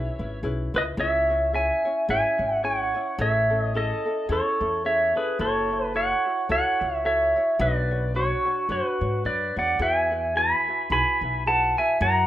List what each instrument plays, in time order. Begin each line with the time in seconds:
Already playing: ukulele C#4 E4 G#4 B4, pedal steel guitar C#5 E5
0.19 upright bass G#1, ukulele C#4 E4 B4
0.43 upright bass B1, ukulele C#4 E4 G#4 B4
0.74 upright bass C#2, ukulele C#4 E4 B4, pedal steel guitar B4 D#5
0.97 upright bass C#2, ukulele C#4 E4 G#4 C#5, pedal steel guitar C#5 E5
1.30 ukulele C#4 E4 C#5
1.53 ukulele C#4 E4 G#4 C#5, pedal steel guitar E5 G#5
1.85 ukulele C#4 E4 C#5
2.09 upright bass G#1, ukulele C#4 E4 G#4 C#5, pedal steel guitar E5 G#5
2.39 upright bass G#1, ukulele C#4 E4 C#5
2.63 ukulele C#4 E4 G#4 C#5, pedal steel guitar C#5 F#5
2.94 ukulele C#4 E4 C#5
3.18 upright bass A1, ukulele C#4 E4 G#4 A4, pedal steel guitar C#5 E5
3.50 ukulele C#4 E4 A4
3.62 pedal steel guitar D#5
3.74 ukulele C#4 E4 G#4 A4, pedal steel guitar A4 D#5
4.06 ukulele C#4 E4 A4
4.29 upright bass E2, ukulele C#4 E4 G#4 A4, pedal steel guitar A4
4.33 pedal steel guitar C#5
4.60 upright bass E2, ukulele C#4 E4 A4
4.85 ukulele C#4 E4 G#4 A4, pedal steel guitar C#5 E5
5.15 ukulele C#4 E4 A4, pedal steel guitar G#4 B4
5.39 upright bass F#1, ukulele E4 F#4 A4 C#5, pedal steel guitar A4 C#5
5.71 ukulele E4 F#4 C#5
5.94 ukulele E4 F#4 A4 C#5, pedal steel guitar C#5 F#5
6.25 ukulele E4 F#4 C#5
6.49 upright bass C#2, ukulele E4 F#4 A4 C#5, pedal steel guitar C#5 F#5
6.81 upright bass C#2, ukulele E4 F#4 C#5
6.96 pedal steel guitar E5
7.04 ukulele E4 F#4 A4 C#5, pedal steel guitar C#5 E5
7.36 ukulele E4 F#4 C#5
7.59 upright bass B1, ukulele D4 F#4 B4 C#5, pedal steel guitar B4 D5
7.91 ukulele D4 F#4 C#5
8.14 ukulele D4 F#4 B4 C#5, pedal steel guitar F#4 C#5
8.45 ukulele D4 F#4 C#5
8.69 upright bass F#2, ukulele D4 F#4 B4 C#5, pedal steel guitar F#4 B4
9.01 upright bass G#2, ukulele D4 F#4 C#5
9.24 upright bass F#2, ukulele D4 F#4 B4 C#5, pedal steel guitar B4 D5
9.56 upright bass E2, ukulele D4 F#4 C#5, pedal steel guitar D5 F#5
9.79 upright bass E2, ukulele E4 F#4 G#4 B4, pedal steel guitar E5 G#5
10.11 ukulele E4 F#4 B4
10.35 ukulele E4 F#4 G#4 B4, pedal steel guitar G#5 B5
10.68 ukulele E4 F#4 B4
10.90 upright bass B1, ukulele E4 F#4 G#4 B4, pedal steel guitar G#5 B5
11.21 upright bass B1, ukulele E4 F#4 B4
11.46 ukulele E4 F#4 G#4 B4, pedal steel guitar F#5 A5
11.78 ukulele E4 F#4 B4, pedal steel guitar E5 G#5
12.01 upright bass F#2, ukulele E4 F#4 A#4 C#5, pedal steel guitar F#5 A#5